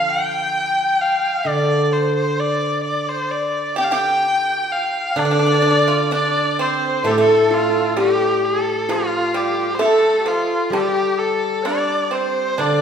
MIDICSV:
0, 0, Header, 1, 7, 480
1, 0, Start_track
1, 0, Tempo, 920245
1, 769, Time_signature, 2, 2, 24, 8
1, 2211, Tempo, 928793
1, 6643, End_track
2, 0, Start_track
2, 0, Title_t, "Dizi"
2, 0, Program_c, 0, 73
2, 0, Note_on_c, 0, 77, 75
2, 50, Note_on_c, 0, 79, 86
2, 58, Note_off_c, 0, 77, 0
2, 769, Note_on_c, 0, 74, 74
2, 777, Note_off_c, 0, 79, 0
2, 1000, Note_on_c, 0, 72, 66
2, 1008, Note_off_c, 0, 74, 0
2, 1252, Note_on_c, 0, 74, 62
2, 1260, Note_off_c, 0, 72, 0
2, 1481, Note_off_c, 0, 74, 0
2, 1484, Note_on_c, 0, 74, 61
2, 1611, Note_on_c, 0, 72, 57
2, 1619, Note_off_c, 0, 74, 0
2, 1727, Note_on_c, 0, 74, 62
2, 1735, Note_off_c, 0, 72, 0
2, 1958, Note_off_c, 0, 74, 0
2, 1961, Note_on_c, 0, 79, 69
2, 2031, Note_off_c, 0, 79, 0
2, 2038, Note_on_c, 0, 79, 84
2, 2664, Note_on_c, 0, 77, 50
2, 2671, Note_off_c, 0, 79, 0
2, 2698, Note_on_c, 0, 74, 84
2, 2706, Note_off_c, 0, 77, 0
2, 3068, Note_off_c, 0, 74, 0
2, 3186, Note_on_c, 0, 74, 77
2, 3408, Note_off_c, 0, 74, 0
2, 3429, Note_on_c, 0, 72, 78
2, 3670, Note_on_c, 0, 69, 78
2, 3677, Note_off_c, 0, 72, 0
2, 3736, Note_off_c, 0, 69, 0
2, 3739, Note_on_c, 0, 69, 80
2, 4149, Note_on_c, 0, 67, 74
2, 4157, Note_off_c, 0, 69, 0
2, 4482, Note_off_c, 0, 67, 0
2, 4621, Note_on_c, 0, 65, 78
2, 5087, Note_on_c, 0, 69, 74
2, 5095, Note_off_c, 0, 65, 0
2, 5285, Note_off_c, 0, 69, 0
2, 5288, Note_on_c, 0, 67, 51
2, 5323, Note_on_c, 0, 65, 71
2, 5330, Note_off_c, 0, 67, 0
2, 5562, Note_on_c, 0, 67, 73
2, 5570, Note_off_c, 0, 65, 0
2, 5593, Note_on_c, 0, 69, 58
2, 5600, Note_off_c, 0, 67, 0
2, 5627, Note_on_c, 0, 67, 75
2, 5634, Note_off_c, 0, 69, 0
2, 5797, Note_on_c, 0, 69, 69
2, 5805, Note_off_c, 0, 67, 0
2, 6032, Note_on_c, 0, 74, 67
2, 6040, Note_off_c, 0, 69, 0
2, 6279, Note_on_c, 0, 72, 67
2, 6287, Note_off_c, 0, 74, 0
2, 6519, Note_off_c, 0, 72, 0
2, 6522, Note_on_c, 0, 74, 79
2, 6643, Note_off_c, 0, 74, 0
2, 6643, End_track
3, 0, Start_track
3, 0, Title_t, "Erhu"
3, 0, Program_c, 1, 110
3, 0, Note_on_c, 1, 77, 87
3, 48, Note_on_c, 1, 79, 88
3, 55, Note_off_c, 1, 77, 0
3, 524, Note_on_c, 1, 77, 79
3, 532, Note_off_c, 1, 79, 0
3, 768, Note_on_c, 1, 74, 89
3, 776, Note_off_c, 1, 77, 0
3, 1003, Note_on_c, 1, 72, 76
3, 1011, Note_off_c, 1, 74, 0
3, 1122, Note_off_c, 1, 72, 0
3, 1125, Note_on_c, 1, 72, 74
3, 1250, Note_on_c, 1, 74, 81
3, 1258, Note_off_c, 1, 72, 0
3, 1474, Note_off_c, 1, 74, 0
3, 1478, Note_on_c, 1, 74, 74
3, 1608, Note_on_c, 1, 72, 77
3, 1616, Note_off_c, 1, 74, 0
3, 1728, Note_on_c, 1, 74, 75
3, 1735, Note_off_c, 1, 72, 0
3, 1967, Note_off_c, 1, 74, 0
3, 1980, Note_on_c, 1, 79, 86
3, 2004, Note_on_c, 1, 77, 71
3, 2012, Note_off_c, 1, 79, 0
3, 2058, Note_on_c, 1, 79, 94
3, 2066, Note_off_c, 1, 77, 0
3, 2458, Note_on_c, 1, 77, 80
3, 2466, Note_off_c, 1, 79, 0
3, 2701, Note_on_c, 1, 74, 101
3, 2709, Note_off_c, 1, 77, 0
3, 3183, Note_off_c, 1, 74, 0
3, 3196, Note_on_c, 1, 74, 98
3, 3434, Note_on_c, 1, 72, 86
3, 3442, Note_off_c, 1, 74, 0
3, 3674, Note_on_c, 1, 69, 91
3, 3682, Note_off_c, 1, 72, 0
3, 3696, Note_on_c, 1, 67, 73
3, 3704, Note_off_c, 1, 69, 0
3, 3743, Note_on_c, 1, 69, 89
3, 3750, Note_off_c, 1, 67, 0
3, 3915, Note_on_c, 1, 65, 89
3, 3923, Note_off_c, 1, 69, 0
3, 4144, Note_off_c, 1, 65, 0
3, 4147, Note_on_c, 1, 67, 92
3, 4386, Note_on_c, 1, 69, 87
3, 4393, Note_off_c, 1, 67, 0
3, 4628, Note_on_c, 1, 65, 97
3, 4636, Note_off_c, 1, 69, 0
3, 4855, Note_on_c, 1, 67, 84
3, 4863, Note_off_c, 1, 65, 0
3, 5058, Note_on_c, 1, 72, 66
3, 5066, Note_off_c, 1, 67, 0
3, 5088, Note_on_c, 1, 69, 85
3, 5096, Note_off_c, 1, 72, 0
3, 5332, Note_on_c, 1, 65, 80
3, 5339, Note_off_c, 1, 69, 0
3, 5566, Note_off_c, 1, 65, 0
3, 5568, Note_on_c, 1, 67, 85
3, 5801, Note_on_c, 1, 69, 75
3, 5809, Note_off_c, 1, 67, 0
3, 6043, Note_on_c, 1, 74, 89
3, 6051, Note_off_c, 1, 69, 0
3, 6254, Note_off_c, 1, 74, 0
3, 6254, Note_on_c, 1, 74, 58
3, 6287, Note_on_c, 1, 72, 77
3, 6295, Note_off_c, 1, 74, 0
3, 6534, Note_on_c, 1, 74, 90
3, 6542, Note_off_c, 1, 72, 0
3, 6643, Note_off_c, 1, 74, 0
3, 6643, End_track
4, 0, Start_track
4, 0, Title_t, "Kalimba"
4, 0, Program_c, 2, 108
4, 1973, Note_on_c, 2, 79, 74
4, 2034, Note_off_c, 2, 79, 0
4, 2041, Note_on_c, 2, 79, 80
4, 2691, Note_on_c, 2, 74, 74
4, 2716, Note_off_c, 2, 79, 0
4, 3174, Note_off_c, 2, 74, 0
4, 3180, Note_on_c, 2, 74, 71
4, 3667, Note_on_c, 2, 69, 71
4, 3676, Note_off_c, 2, 74, 0
4, 3727, Note_off_c, 2, 69, 0
4, 3733, Note_on_c, 2, 69, 70
4, 3900, Note_on_c, 2, 65, 69
4, 3906, Note_off_c, 2, 69, 0
4, 4140, Note_on_c, 2, 67, 73
4, 4147, Note_off_c, 2, 65, 0
4, 4614, Note_on_c, 2, 65, 71
4, 4627, Note_off_c, 2, 67, 0
4, 5081, Note_on_c, 2, 69, 76
4, 5102, Note_off_c, 2, 65, 0
4, 5562, Note_on_c, 2, 67, 65
4, 5574, Note_off_c, 2, 69, 0
4, 6022, Note_off_c, 2, 67, 0
4, 6042, Note_on_c, 2, 74, 75
4, 6523, Note_off_c, 2, 74, 0
4, 6529, Note_on_c, 2, 74, 69
4, 6643, Note_off_c, 2, 74, 0
4, 6643, End_track
5, 0, Start_track
5, 0, Title_t, "Pipa"
5, 0, Program_c, 3, 105
5, 1962, Note_on_c, 3, 67, 72
5, 2031, Note_off_c, 3, 67, 0
5, 2044, Note_on_c, 3, 67, 74
5, 2371, Note_off_c, 3, 67, 0
5, 2371, Note_on_c, 3, 66, 74
5, 2449, Note_off_c, 3, 66, 0
5, 2449, Note_on_c, 3, 65, 74
5, 2677, Note_off_c, 3, 65, 0
5, 2687, Note_on_c, 3, 62, 72
5, 2727, Note_off_c, 3, 62, 0
5, 2734, Note_on_c, 3, 62, 57
5, 2759, Note_off_c, 3, 62, 0
5, 2765, Note_on_c, 3, 62, 62
5, 2800, Note_off_c, 3, 62, 0
5, 2807, Note_on_c, 3, 62, 57
5, 2837, Note_off_c, 3, 62, 0
5, 2843, Note_on_c, 3, 62, 58
5, 2877, Note_off_c, 3, 62, 0
5, 2883, Note_on_c, 3, 62, 54
5, 2918, Note_off_c, 3, 62, 0
5, 2924, Note_on_c, 3, 62, 65
5, 2962, Note_off_c, 3, 62, 0
5, 2970, Note_on_c, 3, 62, 54
5, 3005, Note_off_c, 3, 62, 0
5, 3058, Note_on_c, 3, 65, 74
5, 3171, Note_off_c, 3, 65, 0
5, 3183, Note_on_c, 3, 62, 73
5, 3406, Note_off_c, 3, 62, 0
5, 3427, Note_on_c, 3, 60, 70
5, 3648, Note_off_c, 3, 60, 0
5, 3661, Note_on_c, 3, 57, 77
5, 3724, Note_off_c, 3, 57, 0
5, 3730, Note_on_c, 3, 57, 73
5, 4118, Note_off_c, 3, 57, 0
5, 4137, Note_on_c, 3, 55, 75
5, 4591, Note_off_c, 3, 55, 0
5, 4616, Note_on_c, 3, 53, 80
5, 4834, Note_off_c, 3, 53, 0
5, 4849, Note_on_c, 3, 55, 70
5, 5070, Note_off_c, 3, 55, 0
5, 5081, Note_on_c, 3, 57, 78
5, 5306, Note_off_c, 3, 57, 0
5, 5321, Note_on_c, 3, 53, 63
5, 5544, Note_off_c, 3, 53, 0
5, 5567, Note_on_c, 3, 55, 73
5, 6024, Note_off_c, 3, 55, 0
5, 6040, Note_on_c, 3, 62, 71
5, 6268, Note_off_c, 3, 62, 0
5, 6279, Note_on_c, 3, 60, 61
5, 6508, Note_off_c, 3, 60, 0
5, 6521, Note_on_c, 3, 62, 75
5, 6643, Note_off_c, 3, 62, 0
5, 6643, End_track
6, 0, Start_track
6, 0, Title_t, "Guzheng"
6, 0, Program_c, 4, 107
6, 0, Note_on_c, 4, 50, 48
6, 0, Note_on_c, 4, 53, 49
6, 286, Note_off_c, 4, 50, 0
6, 754, Note_on_c, 4, 50, 51
6, 1242, Note_off_c, 4, 53, 0
6, 2202, Note_off_c, 4, 50, 0
6, 2685, Note_on_c, 4, 50, 53
6, 3654, Note_on_c, 4, 45, 58
6, 4135, Note_off_c, 4, 50, 0
6, 5083, Note_off_c, 4, 45, 0
6, 5549, Note_on_c, 4, 55, 60
6, 6521, Note_on_c, 4, 50, 53
6, 6643, Note_off_c, 4, 50, 0
6, 6643, Note_off_c, 4, 55, 0
6, 6643, End_track
7, 0, Start_track
7, 0, Title_t, "Drums"
7, 2701, Note_on_c, 9, 76, 58
7, 2753, Note_off_c, 9, 76, 0
7, 3668, Note_on_c, 9, 76, 52
7, 3720, Note_off_c, 9, 76, 0
7, 4619, Note_on_c, 9, 76, 53
7, 4671, Note_off_c, 9, 76, 0
7, 5566, Note_on_c, 9, 76, 56
7, 5618, Note_off_c, 9, 76, 0
7, 6046, Note_on_c, 9, 77, 39
7, 6097, Note_off_c, 9, 77, 0
7, 6534, Note_on_c, 9, 76, 52
7, 6586, Note_off_c, 9, 76, 0
7, 6643, End_track
0, 0, End_of_file